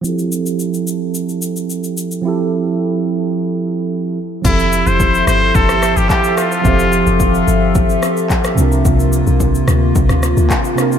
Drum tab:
CC |----------------|----------------|x---------------|----------------|
SH |xxxxxxx-xxxxxxxx|----------------|xxxxxxx-xxxxxxxx|xxxxxxx-xxxxxxxx|
CP |----------------|----------------|------------x---|------------x---|
SD |----------------|----------------|------r--rr---r-|----------r--r--|
BD |----------------|----------------|o---o---o---o---|o---o---o---o---|

CC |----------------|
SH |xxxxxxx-xxxxxxxx|
CP |------------x---|
SD |------r--rr---r-|
BD |o---o---o---o---|